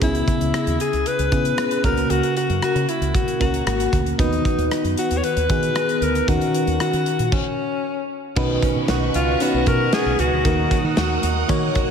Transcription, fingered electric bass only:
0.02 0.21 C#2 medium
0.40 0.50 C#2 medium
0.67 0.77 D#2 medium
0.93 1.03 C#2 medium
1.19 1.29 C#2 medium
1.32 1.52 C#3 medium
1.84 2.04 C#2 medium
2.10 2.20 C#2 medium
2.49 2.59 F#2 medium
2.62 muted fingered electric bass stroke soft
2.75 2.85 C#3 medium
3.01 3.11 C#2 medium
3.41 3.60 C#2 medium
3.66 3.86 G#1 medium
3.93 4.12 D2 medium
4.19 4.38 D#2 medium
4.58 4.68 D#2 medium
4.84 4.94 F#2 medium
5.11 5.20 D#2 medium
5.37 5.46 D#2 medium
5.50 5.69 D#3 medium
6.01 6.21 D2 medium
6.28 6.38 D#2 medium
6.67 6.77 D#2 medium
6.80 muted fingered electric bass stroke soft
6.93 7.03 D#3 medium
7.19 7.29 A#2 medium
8.36 8.56 B1 medium
8.76 8.85 B2 medium
8.89 9.08 B1 medium
9.15 9.34 C#2 medium
9.54 9.64 B1 medium
9.67 9.86 B2 medium
10.06 10.16 B1 medium
10.19 10.29 C#2 medium
10.32 10.42 D2 medium
10.45 10.65 D#2 medium
10.84 10.94 D#3 loud
10.97 11.17 D#2 medium
11.23 11.43 D#2 medium
11.49 11.69 D#3 medium

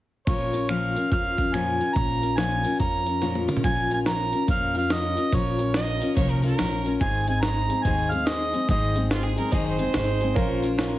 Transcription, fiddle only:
5.74 6.15 D#5 medium
6.16 6.32 C#5 medium
6.30 6.44 A#4 medium
6.45 6.92 A#4 medium
9.10 9.24 F4 medium
9.23 9.37 G#4 medium
9.38 9.53 A#4 medium
9.52 9.65 D#5 medium
9.66 10.89 C5 loud

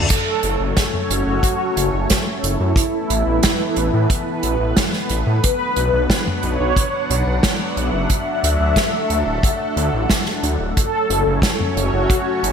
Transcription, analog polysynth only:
0.10 0.97 A4 loud
1.10 2.30 F#4 loud
2.43 5.30 E4 loud
5.43 6.30 B4 loud
6.44 7.63 C#5 loud
7.77 10.63 E5 loud
10.77 11.63 A4 loud
11.77 12.52 F#4 loud

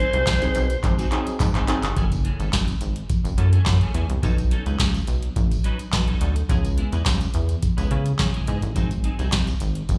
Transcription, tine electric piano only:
0.41 0.66 F#3 medium
0.41 0.66 C4 medium
0.41 0.66 D#4 medium
0.41 0.66 G#4 medium
0.98 1.04 D#4 loud
0.98 1.04 F#4 loud
1.11 1.36 F#3 loud
1.11 1.37 C4 medium
1.11 1.37 D#4 medium
1.11 1.37 G#4 loud
1.68 1.81 F#3 loud
1.68 1.81 C4 medium
1.68 1.82 D#4 medium
1.68 1.82 G#4 loud

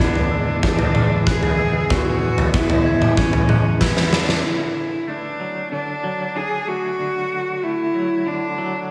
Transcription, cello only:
0.01 0.64 D4 medium
0.65 1.24 D4 medium
1.28 1.93 G#4 medium
1.92 2.55 F#4 medium
2.55 3.20 E4 medium
3.19 3.81 C#4 medium
3.82 4.15 B3 medium
4.13 4.46 D4 medium
4.45 5.10 E4 medium
5.09 5.72 D4 medium
5.73 6.38 D4 soft
6.36 6.70 G#4 medium
6.68 7.65 F#4 medium
7.64 8.29 E4 medium
8.28 8.91 D4 medium

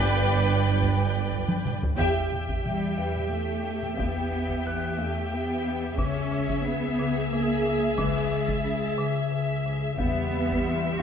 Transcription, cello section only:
0.00 1.78 G2 medium
2.64 3.27 G3 medium
3.31 3.98 A3 medium
3.98 4.98 B3 medium
4.98 5.31 A3 medium
5.32 5.98 B3 medium
5.98 6.63 C#4 medium
6.64 7.31 B3 medium
7.31 7.98 A#3 medium
7.98 8.96 G#3 medium
9.98 10.94 B3 medium
10.98 11.02 F#4 medium

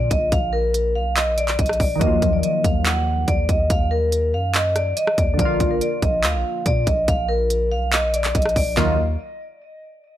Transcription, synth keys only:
0.00 1.94 D3 medium
0.00 1.96 F3 medium
0.00 1.98 A#3 medium
0.00 2.00 F4 medium
1.95 5.32 D#3 medium
1.95 5.34 F#3 medium
2.03 5.36 F3 medium
2.03 5.36 A#3 medium
5.34 8.70 D3 medium
5.34 8.72 F3 medium
5.41 8.74 A#3 medium
5.41 8.76 F4 medium
8.77 8.97 D#3 medium
8.77 8.97 F#3 medium
8.77 8.97 A#3 medium
8.77 8.97 F4 medium

